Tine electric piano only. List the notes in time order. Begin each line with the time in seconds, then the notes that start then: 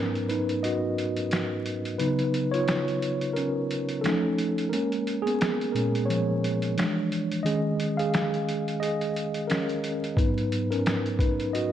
Already playing: G#2 F#3 B3 C#4 D#4 A#4 B4
0.29 D#4 B4
0.63 F#4 D#5
1.99 C#3 F#3 B3 D#4 B4
2.52 F4 C#5
3.33 C#4 A#4
4.02 F3 A3 D#4 A4
4.06 C#4
4.69 G#3 A#3 C#4 A#4
5.22 G#4
5.26 B3
5.72 A#2 G#3 C#4 A#4
6.06 F3 C#5
6.76 E3 G#3 D4
7.43 D#3 G#3 C#4 G#4 D#5
7.97 G#4 F5
8.80 G#4 D#5
9.47 C#4 A#4
10.17 G#2 F#3 B3 D#4 B4
10.71 C#4 A#4
11.20 D#4 B4
11.53 F#4 D#5